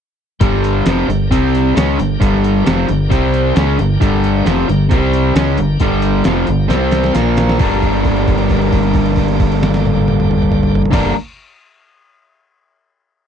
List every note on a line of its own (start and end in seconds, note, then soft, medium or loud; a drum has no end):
0.40 0.83 G1 medium
0.40 0.85 G2 medium
0.40 0.85 D3 medium
0.40 0.86 G3 loud
0.40 1.30 D4 medium
0.40 1.30 A#4 medium
0.40 1.29 G5 medium
0.40 kick loud
0.40 closed hi-hat medium
0.54 snare soft
0.64 closed hi-hat medium
0.86 1.07 F1 loud
0.86 1.07 F2 medium
0.86 1.08 C3 medium
0.86 1.09 F3 medium
0.86 snare loud
0.86 closed hi-hat loud
1.08 1.29 G1 medium
1.08 1.26 G2 medium
1.08 1.27 D3 medium
1.08 closed hi-hat medium
1.30 1.73 C2 medium
1.30 1.75 C3 medium
1.30 1.76 G3 medium
1.30 1.76 C4 medium
1.30 1.76 G4 medium
1.30 1.75 G5 medium
1.30 kick medium
1.30 closed hi-hat medium
1.55 closed hi-hat medium
1.75 1.98 C#2 medium
1.75 1.98 C#3 medium
1.75 1.98 G#3 loud
1.75 1.99 C#4 medium
1.75 3.10 D4 medium
1.75 3.10 A#4 medium
1.75 3.08 G5 medium
1.75 snare loud
1.75 closed hi-hat loud
1.98 2.20 G1 medium
1.98 2.16 G2 medium
1.98 2.17 D3 medium
1.98 closed hi-hat medium
2.20 2.63 G1 medium
2.20 2.65 G2 medium
2.20 2.65 D3 loud
2.20 2.66 G3 medium
2.20 kick medium
2.20 closed hi-hat medium
2.35 snare soft
2.44 closed hi-hat medium
2.65 2.88 F1 medium
2.65 2.87 F2 medium
2.65 2.87 C3 medium
2.65 2.88 F3 medium
2.65 snare loud
2.65 closed hi-hat medium
2.87 3.10 G1 medium
2.87 3.06 G2 medium
2.87 3.06 D3 medium
2.87 closed hi-hat medium
3.09 3.53 C2 medium
3.09 3.55 C3 medium
3.09 3.56 G3 medium
3.09 3.55 C4 medium
3.09 3.56 C4 loud
3.09 3.55 G4 medium
3.09 3.53 G5 medium
3.09 kick medium
3.09 closed hi-hat medium
3.34 closed hi-hat medium
3.54 3.78 C#2 medium
3.54 3.78 C#3 medium
3.54 3.78 G#3 medium
3.54 3.78 C#4 loud
3.54 4.89 D4 medium
3.54 4.89 A#4 medium
3.54 4.88 G5 medium
3.54 snare loud
3.54 closed hi-hat medium
3.79 4.00 G1 medium
3.79 3.97 G2 medium
3.79 3.97 D3 medium
3.79 closed hi-hat medium
4.00 4.43 G1 medium
4.00 4.45 G2 medium
4.00 4.46 D3 medium
4.00 4.46 G3 loud
4.00 kick loud
4.00 closed hi-hat medium
4.14 snare soft
4.24 closed hi-hat medium
4.46 4.67 F1 medium
4.46 4.68 F2 medium
4.46 4.68 C3 medium
4.46 4.69 F3 loud
4.46 snare loud
4.46 closed hi-hat medium
4.69 4.90 G1 medium
4.69 4.87 G2 medium
4.69 4.90 D3 medium
4.69 closed hi-hat medium
4.89 5.33 C2 medium
4.89 5.35 C3 medium
4.89 5.36 G3 medium
4.89 5.34 C4 medium
4.89 5.36 C4 loud
4.89 5.35 G4 medium
4.89 5.32 G5 medium
4.89 kick medium
4.89 closed hi-hat medium
5.13 closed hi-hat medium
5.33 5.57 C#2 loud
5.33 5.58 C#3 medium
5.33 5.58 G#3 medium
5.33 5.58 C#4 medium
5.33 6.68 D4 medium
5.33 6.68 A#4 medium
5.33 6.67 G5 medium
5.33 snare loud
5.33 closed hi-hat loud
5.58 5.79 G1 medium
5.58 5.76 G2 medium
5.58 5.77 D3 medium
5.58 closed hi-hat medium
5.80 6.22 G1 medium
5.80 6.25 G2 medium
5.80 6.25 D3 medium
5.80 6.25 G3 loud
5.80 kick loud
5.80 closed hi-hat loud
6.02 closed hi-hat medium
6.24 6.47 F1 medium
6.24 6.47 F2 medium
6.24 6.47 C3 medium
6.24 6.48 F3 medium
6.24 snare loud
6.24 closed hi-hat medium
6.47 6.69 G1 medium
6.47 6.66 G2 medium
6.47 6.66 D3 medium
6.47 closed hi-hat medium
6.68 7.12 C2 medium
6.68 7.14 C3 medium
6.68 7.15 G3 medium
6.68 7.14 C4 medium
6.68 7.15 C4 medium
6.68 7.14 G4 medium
6.68 7.14 G5 medium
6.68 snare medium
6.68 closed hi-hat medium
6.91 snare medium
6.91 closed hi-hat medium
7.04 snare medium
7.11 7.59 A#2 medium
7.11 7.59 F3 medium
7.11 7.58 A#3 medium
7.11 7.58 F4 medium
7.11 7.58 F5 medium
7.11 closed hi-hat medium
7.15 7.57 A#1 medium
7.15 7.60 A#3 medium
7.15 snare medium
7.37 snare medium
7.37 closed hi-hat medium
7.49 snare medium
7.58 10.83 G1 medium
7.58 10.90 G2 medium
7.58 10.91 D3 medium
7.58 10.92 G3 medium
7.58 10.83 A#3 medium
7.58 10.93 A#3 medium
7.58 10.83 G4 medium
7.58 10.83 D5 medium
7.58 kick loud
7.58 crash medium
7.62 10.94 D4 medium
7.62 10.94 A#4 medium
7.82 kick medium
7.82 crash soft
7.93 crash soft
8.04 kick medium
8.04 crash soft
8.17 crash soft
8.27 kick medium
8.27 crash soft
8.38 crash soft
8.49 kick medium
8.49 crash soft
8.62 crash soft
8.72 kick medium
8.72 crash soft
8.83 crash soft
8.93 kick medium
8.93 crash medium
9.06 crash soft
9.16 kick medium
9.16 crash medium
9.28 crash medium
9.40 kick medium
9.40 crash soft
9.52 crash medium
9.63 snare medium
9.74 snare medium
9.85 high tom medium
9.97 high tom medium
10.08 high tom medium
10.20 mid tom medium
10.31 mid tom medium
10.42 mid tom loud
10.52 mid tom loud
10.63 mid tom loud
10.75 floor tom loud
10.85 floor tom medium
10.91 11.11 G1 medium
10.91 11.12 G2 medium
10.91 11.12 D3 loud
10.91 11.13 G3 medium
10.91 11.12 A#3 medium
10.91 11.13 A#3 loud
10.91 11.13 D4 medium
10.91 11.12 G4 medium
10.91 11.14 A#4 loud
10.91 11.12 D5 medium
10.91 kick loud
10.91 snare medium
10.91 crash loud